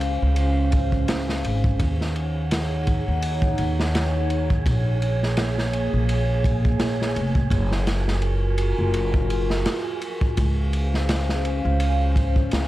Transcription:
Already playing: upright bass C#2, analog synth pad C#4 C5 F5, synth texture G#4
0.01 ride
0.22 upright bass C#2
0.36 ride
0.72 kick, ride
0.92 kick
1.08 snare, ride
1.29 snare
1.44 upright bass G#1, ride
1.64 kick
1.78 upright bass D#2, analog synth pad D#4 C#5 F#5, kick, ride
2.01 snare
2.16 ride
2.51 snare, ride
2.87 kick, ride
3.08 upright bass D#2
3.22 ride
3.42 kick
3.58 upright bass D#2, ride
3.80 snare
3.95 snare, ride
4.30 ride
4.50 kick
4.65 upright bass A#1, analog synth pad A#3 G#4, kick, ride
5.02 ride
5.23 snare
5.37 snare, ride
5.58 snare
5.73 ride
5.93 upright bass A#1
6.09 ride
6.44 kick, ride
6.65 kick
6.80 upright bass A#1, snare, ride
7.02 snare
7.16 upright bass F1, ride
7.35 kick
7.50 upright bass F#1, analog synth pad F4 F#4 A#4, kick, ride
7.72 snare
7.87 snare, ride
8.08 snare
8.22 ride
8.58 ride
8.79 upright bass F#1
8.94 ride
9.14 kick
9.30 ride
9.50 snare
9.66 snare, ride
10.01 ride
10.21 kick
10.37 upright bass C#2, analog synth pad C#4 C5 F5, kick, ride
10.73 ride
10.94 snare
11.09 snare, ride
11.29 snare
11.45 ride
11.65 upright bass C#2
11.80 ride
12.16 kick, ride
12.36 kick
12.51 upright bass C#2, snare, ride

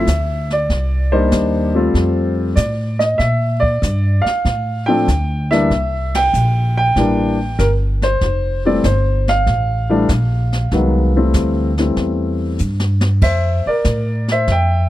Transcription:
Already playing: upright piano E5
0.07 upright bass D2, kick, snare, hi-hat pedal
0.50 upright piano D5, snare
0.69 upright bass C2, brush sweep, kick, snare
1.12 upright piano G3 A#3 D4 D#4 C5
1.31 upright bass D#2, kick, snare, hi-hat pedal
1.75 upright piano G3 A3 C4 F4
1.94 upright bass F2, brush sweep, kick, snare
2.56 upright bass A2, upright piano D5, kick, snare, hi-hat pedal
2.99 upright piano D#5, snare
3.18 upright bass A#2, upright piano E5, brush sweep, kick, snare
3.60 upright piano D5, kick
3.82 upright bass G2, kick, snare, hi-hat pedal
4.22 upright piano F5, muted upright bass stroke
4.26 snare
4.45 upright bass A2, brush sweep, kick, snare
4.86 upright piano F3 A3 C4 D4 G5
5.08 upright bass D2, kick, snare, hi-hat pedal
5.51 upright piano E3 G3 A#3 D4 E5, snare
5.70 upright bass C2, brush sweep, kick, snare
6.14 upright piano G5, snare, ride
6.33 upright bass A#1, hi-hat pedal
6.77 upright piano G5
6.96 upright bass A1, upright piano E3 G3 A#3 D4, brush sweep, kick, snare
7.59 upright bass G1, upright piano A#4, kick, snare, hi-hat pedal
8.02 upright piano C5, snare
8.21 upright bass F1, brush sweep, kick, snare
8.65 upright piano E3 G3 A3 C4 D5
8.84 upright bass G1, upright piano C5, kick, snare, hi-hat pedal
9.28 upright piano F5, snare
9.47 upright bass A1, brush sweep, kick, snare
9.89 upright piano E3 G3 A3 D4
10.09 upright bass A#1, kick, snare, hi-hat pedal
10.52 snare
10.71 upright bass C2, upright piano D#3 F#3 G#3 B3, brush sweep, kick, snare
11.16 upright piano E3 G3 A3 C4
11.34 upright bass D2, kick, snare, hi-hat pedal
11.78 upright piano E3 G3 A3 C4, snare
11.96 upright bass E2, brush sweep, kick, snare
12.59 upright bass G2, hi-hat pedal
12.80 snare
13.01 snare
13.22 upright bass F2, upright piano C5 E5, brush sweep, kick, snare, crash
13.66 upright piano A#4 D5, muted upright bass stroke
13.84 upright bass A2, kick, snare, hi-hat pedal
14.28 upright piano C5 E5, snare
14.48 upright bass F2, brush sweep, kick, snare
14.52 upright piano E5 G5

